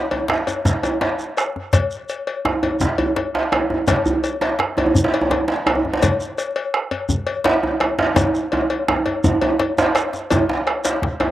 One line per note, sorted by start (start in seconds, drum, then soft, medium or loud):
0.11 cowbell soft
0.11 djembe slap soft
0.11 djembe tone medium
0.28 bombo rim medium
0.28 djembe slap medium
0.47 cowbell medium
0.47 djembe tone medium
0.47 shekere soft
0.65 bombo low medium
0.65 djembe slap soft
0.65 djembe slap medium
0.65 djembe bass medium
0.65 shekere medium
0.83 bombo rim soft
0.83 cowbell medium
0.83 djembe slap soft
0.83 djembe tone medium
0.83 shekere soft
1.01 bombo rim soft
1.01 cowbell soft
1.01 djembe slap medium
1.19 bombo rim soft
1.19 shekere soft
1.37 bombo rim medium
1.37 cowbell soft
1.37 shekere soft
1.56 bombo rim soft
1.56 djembe slap soft
1.56 djembe tone medium
1.73 bombo low medium
1.73 cowbell medium
1.73 djembe slap medium
1.73 djembe bass medium
1.73 shekere medium
1.91 shekere soft
2.09 cowbell soft
2.09 shekere soft
2.27 cowbell medium
2.45 bombo rim medium
2.45 djembe slap medium
2.45 djembe tone loud
2.63 cowbell soft
2.63 djembe slap soft
2.63 djembe tone medium
2.80 bombo low medium
2.80 djembe slap medium
2.80 djembe bass medium
2.80 shekere medium
2.98 cowbell medium
2.98 djembe bass medium
3.16 cowbell medium
3.16 djembe slap medium
3.34 bombo rim soft
3.34 djembe slap medium
3.52 bombo rim medium
3.52 cowbell medium
3.52 djembe tone loud
3.70 djembe slap soft
3.70 djembe tone medium
3.88 bombo low loud
3.88 cowbell medium
3.88 djembe slap medium
3.88 djembe bass medium
3.88 shekere medium
4.06 djembe bass medium
4.06 shekere soft
4.24 cowbell medium
4.24 shekere soft
4.41 cowbell medium
4.41 djembe slap medium
4.59 bombo rim loud
4.59 djembe slap medium
4.77 cowbell medium
4.77 djembe tone medium
4.77 djembe tone loud
4.86 djembe tone medium
4.95 bombo low medium
4.95 djembe bass medium
4.95 shekere medium
5.04 djembe slap medium
5.14 cowbell medium
5.21 djembe tone loud
5.30 cowbell medium
5.30 djembe slap medium
5.30 djembe tone medium
5.48 bombo rim soft
5.48 djembe slap medium
5.66 bombo rim loud
5.66 cowbell medium
5.66 djembe tone loud
5.75 djembe tone medium
5.85 djembe tone medium
5.93 djembe slap medium
6.02 bombo low loud
6.02 cowbell medium
6.02 djembe slap medium
6.02 djembe bass medium
6.02 shekere medium
6.20 shekere soft
6.38 cowbell medium
6.38 shekere soft
6.56 cowbell medium
6.74 bombo rim loud
6.91 cowbell medium
6.91 djembe slap soft
6.91 djembe tone medium
7.09 bombo low medium
7.09 djembe bass medium
7.09 shekere medium
7.27 cowbell medium
7.44 cowbell soft
7.44 djembe slap medium
7.44 djembe slap loud
7.63 bombo rim soft
7.63 djembe tone medium
7.80 bombo rim loud
7.80 cowbell medium
7.80 djembe tone medium
7.98 djembe slap soft
7.98 djembe slap loud
7.98 djembe tone medium
8.16 bombo rim soft
8.16 bombo low loud
8.16 cowbell medium
8.16 djembe slap medium
8.16 djembe tone loud
8.16 djembe bass medium
8.16 shekere medium
8.35 bombo rim soft
8.35 shekere soft
8.52 cowbell medium
8.52 djembe tone loud
8.70 cowbell medium
8.88 bombo rim medium
8.88 djembe slap medium
8.88 djembe tone loud
9.06 bombo rim soft
9.06 cowbell medium
9.06 djembe slap soft
9.06 djembe tone medium
9.24 bombo low medium
9.24 djembe tone loud
9.24 djembe bass medium
9.24 shekere medium
9.41 cowbell medium
9.41 djembe tone loud
9.59 cowbell medium
9.59 djembe slap medium
9.78 djembe slap loud
9.78 djembe bass soft
9.78 shekere soft
9.95 bombo rim loud
9.95 cowbell medium
9.95 djembe slap soft
9.95 shekere soft
10.13 djembe slap medium
10.13 shekere soft
10.30 bombo low medium
10.30 cowbell medium
10.30 djembe slap medium
10.30 djembe tone loud
10.30 djembe bass medium
10.30 shekere medium
10.49 bombo rim soft
10.49 djembe slap medium
10.67 bombo rim medium
10.67 cowbell soft
10.85 cowbell medium
10.85 djembe slap medium
10.85 djembe slap soft
10.85 shekere soft
11.02 bombo rim soft
11.02 bombo low medium
11.02 djembe slap medium
11.20 bombo rim medium
11.20 cowbell soft
11.20 djembe slap soft
11.20 djembe tone medium
11.20 djembe tone loud